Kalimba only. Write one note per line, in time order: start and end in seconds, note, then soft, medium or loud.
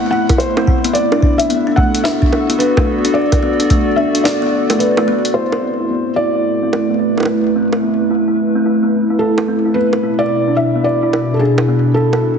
0.13 0.27 E4 medium
0.30 0.39 E4 medium
0.57 0.67 C4 medium
0.67 0.84 E4 medium
0.85 0.94 B3 medium
1.12 1.21 D4 medium
1.23 1.37 D4 medium
1.50 1.66 B3 medium
1.67 1.77 D4 medium
1.77 1.92 A3 medium
2.05 2.20 D4 medium
2.22 2.31 D4 medium
2.50 2.60 B3 medium
2.60 2.76 D4 medium
2.77 2.86 A3 medium
3.05 3.14 D4 medium
3.15 3.30 D4 medium
3.43 3.59 B3 medium
3.60 3.70 D4 medium
3.70 3.85 A3 medium
3.98 4.13 D4 medium
4.15 4.24 D4 medium
4.42 4.52 B3 medium
4.70 4.75 A3 medium
4.97 5.07 A3 medium
5.08 5.23 B3 loud
5.35 5.50 E4 medium
5.63 5.79 C4 medium
5.80 5.90 E4 medium
5.90 6.05 B3 medium
6.18 6.33 E4 medium
6.35 6.44 E4 medium
6.63 6.72 C4 medium
6.73 6.89 E4 medium
6.90 6.99 B3 medium
7.18 7.27 E4 medium
7.28 7.43 E4 medium
7.56 7.72 C4 medium
7.73 7.83 E4 medium
7.83 7.98 B3 medium
8.11 8.25 E4 medium
8.28 8.37 E4 medium
8.55 8.65 C4 medium
8.66 8.82 E4 medium
8.83 8.92 B3 medium
9.10 9.19 E4 medium
9.21 9.36 E4 medium
9.48 9.64 C4 medium
9.65 9.75 E4 medium
9.76 9.91 B3 medium
10.03 10.18 E4 medium
10.20 10.29 E4 medium
10.48 10.58 D4 medium
10.58 10.75 E4 medium
10.75 10.85 B3 medium
11.03 11.12 E4 medium
11.13 11.28 E4 medium
11.41 11.57 D4 medium
11.58 11.68 E4 medium
11.68 11.83 B3 medium
11.96 12.11 E4 medium
12.13 12.22 E4 medium